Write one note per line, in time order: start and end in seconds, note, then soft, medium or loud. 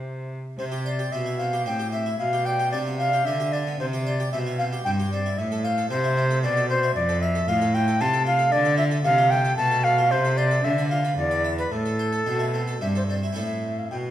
0.00 0.34 C3 medium
0.00 0.36 C3 medium
0.00 0.52 C4 soft
0.00 0.53 E4 soft
0.00 0.54 G4 soft
0.00 0.31 C5 medium
0.58 1.09 C3 medium
0.58 0.64 C5 medium
0.72 0.86 G4 soft
0.85 1.00 C5 medium
0.85 1.14 D5 medium
0.99 1.13 G4 medium
1.12 1.63 B2 medium
1.12 1.68 B2 medium
1.12 1.27 C4 medium
1.12 1.40 E5 medium
1.26 1.40 E4 medium
1.39 1.54 C4 soft
1.39 1.66 F5 medium
1.53 1.67 G4 medium
1.66 2.16 A2 medium
1.66 2.19 A2 medium
1.66 1.80 C4 medium
1.66 1.92 G5 loud
1.79 1.94 G4 soft
1.92 2.07 C4 soft
1.92 2.18 E5 medium
2.06 2.20 E4 medium
2.19 2.69 B2 medium
2.19 2.75 B2 medium
2.19 2.47 F5 loud
2.33 2.47 G4 medium
2.45 2.61 D5 medium
2.45 2.71 G5 loud
2.59 2.74 G4 medium
2.72 3.22 C3 medium
2.72 3.26 C3 medium
2.72 2.87 D4 medium
2.72 2.78 D5 medium
2.87 3.01 B3 medium
2.98 3.14 D4 soft
2.98 3.27 F5 loud
3.13 3.27 G4 medium
3.25 3.79 D3 medium
3.25 3.76 D3 medium
3.25 3.41 D4 medium
3.25 3.54 E5 loud
3.40 3.54 G4 medium
3.52 3.68 D4 medium
3.52 3.79 D5 loud
3.67 3.80 B3 soft
3.80 4.32 C3 medium
3.80 4.29 C3 medium
3.80 3.86 C5 loud
3.93 4.07 G4 medium
4.06 4.21 C5 medium
4.06 4.31 D5 medium
4.20 4.34 G4 medium
4.32 4.82 B2 medium
4.32 4.85 B2 medium
4.32 4.47 C4 medium
4.32 4.38 E5 loud
4.47 4.60 E4 medium
4.58 4.73 C4 medium
4.58 4.64 F5 loud
4.73 4.87 G4 medium
4.85 5.38 G2 medium
4.85 5.35 G2 medium
4.85 5.00 C4 medium
4.85 4.91 G5 loud
5.00 5.13 G4 medium
5.12 5.26 C4 soft
5.12 5.40 D5 loud
5.26 5.39 E4 medium
5.38 5.87 A2 medium
5.38 5.90 A2 medium
5.38 5.65 E5 loud
5.52 5.65 A4 medium
5.64 5.78 C5 medium
5.64 5.89 F5 loud
5.78 5.92 A4 medium
5.90 6.39 C3 medium
5.90 6.45 C3 medium
5.90 6.05 C4 medium
5.90 6.42 C5 loud
6.04 6.18 E4 medium
6.17 6.31 C4 medium
6.31 6.44 A4 medium
6.43 6.96 B2 medium
6.43 6.92 B2 medium
6.43 6.57 C4 medium
6.43 6.69 D5 loud
6.57 6.71 A4 medium
6.70 6.84 C4 medium
6.70 6.94 C5 loud
6.83 6.96 E4 medium
6.95 7.45 F2 medium
6.95 7.45 F2 loud
6.95 7.23 D5 loud
7.09 7.23 A4 medium
7.22 7.50 E5 loud
7.22 7.36 F5 medium
7.35 7.49 A4 medium
7.48 7.97 A2 medium
7.48 8.02 A2 loud
7.48 7.62 F4 medium
7.48 7.76 F5 loud
7.62 7.75 A4 medium
7.74 7.88 F4 medium
7.74 8.02 G5 loud
7.88 8.01 A4 medium
8.01 8.52 C3 medium
8.01 8.49 C3 medium
8.01 8.14 F4 medium
8.01 8.26 A5 loud
8.14 8.27 A4 medium
8.26 8.40 F4 medium
8.26 8.54 F5 loud
8.39 8.52 A4 medium
8.52 9.01 D3 medium
8.52 9.04 D3 loud
8.52 8.77 D5 loud
8.65 8.79 A4 medium
8.78 8.92 F4 medium
8.78 8.84 E5 loud
8.91 9.05 A4 medium
9.04 9.54 C3 medium
9.04 9.57 C3 loud
9.04 9.19 A3 medium
9.04 9.32 F5 loud
9.18 9.32 F4 medium
9.30 9.46 A3 medium
9.30 9.56 G5 loud
9.45 9.59 A4 medium
9.57 10.07 B2 medium
9.57 10.13 B2 medium
9.57 9.72 A3 medium
9.57 9.85 A5 loud
9.71 9.85 A4 medium
9.84 9.99 A3 medium
9.84 10.13 F5 loud
9.98 10.11 F4 medium
10.11 10.63 C3 loud
10.11 10.60 C3 medium
10.11 10.39 C5 loud
10.25 10.38 A4 medium
10.37 10.51 C5 medium
10.37 10.66 D5 loud
10.51 10.64 A4 medium
10.64 11.16 D3 medium
10.64 11.14 D3 medium
10.64 10.89 E5 loud
10.78 10.92 B4 medium
10.90 11.05 F4 medium
10.90 11.16 F5 medium
11.05 11.18 B4 medium
11.17 11.71 E2 medium
11.17 11.68 E2 medium
11.17 11.57 D5 loud
11.31 11.45 B4 medium
11.44 11.59 E5 medium
11.59 11.72 B4 medium
11.59 11.73 B4 medium
11.72 12.23 A2 medium
11.72 12.26 A2 medium
11.72 12.81 A4 loud
11.86 12.00 A4 medium
11.99 12.14 C5 medium
12.13 12.27 A4 medium
12.26 12.78 B2 medium
12.26 12.81 B2 medium
12.26 12.41 C4 medium
12.39 12.54 E4 medium
12.54 12.69 C4 medium
12.68 12.82 A4 medium
12.81 13.33 G2 medium
12.81 13.36 G2 medium
12.81 12.96 C4 medium
12.81 12.88 E5 loud
12.95 13.10 A4 medium
12.95 13.03 C5 medium
13.09 13.24 C4 medium
13.09 13.15 D5 medium
13.23 13.33 E4 soft
13.33 14.11 C4 medium
13.33 14.11 E4 soft
13.33 14.11 A4 soft
13.37 13.88 A2 medium
13.37 13.80 E5 medium
13.79 13.90 F5 medium
13.91 14.11 B2 medium
13.91 13.97 G5 medium